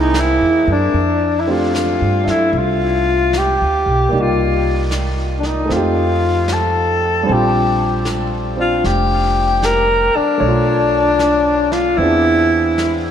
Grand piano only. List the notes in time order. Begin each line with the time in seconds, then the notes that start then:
Already playing: A#3 C4 E4 G#4
1.47 A3 C4 D4 G4
2.24 D4 E5
2.28 A4
4.09 A#3 D#4 D5
4.14 G4
5.66 A3 C4
5.72 D#4
5.76 G4
7.23 G3 C4
7.31 D4 F4
8.57 C4 D4
10.38 A3 C#5
10.44 D4
10.48 F4
11.97 B3 C4
12.01 D4 G#4